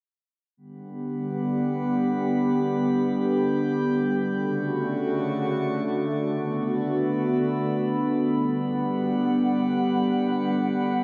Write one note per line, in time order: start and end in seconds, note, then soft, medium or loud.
0.57 11.04 D3 medium
0.57 4.35 G3 medium
0.57 4.34 B3 medium
0.57 4.34 G4 medium
0.57 4.35 G4 medium
0.57 2.46 F#5 medium
0.57 4.35 B5 medium
2.48 4.36 G5 medium
4.38 6.27 C#3 medium
4.38 8.15 A3 medium
4.38 6.27 F#4 medium
4.38 6.27 D5 medium
4.38 6.27 C#6 medium
6.29 11.04 B3 medium
6.29 8.17 F#4 medium
6.29 8.17 A4 medium
6.29 8.17 D5 medium
6.29 8.17 B5 medium
8.19 11.04 G3 medium
8.19 11.04 G4 medium
8.19 11.04 F#5 medium
8.19 11.04 B5 medium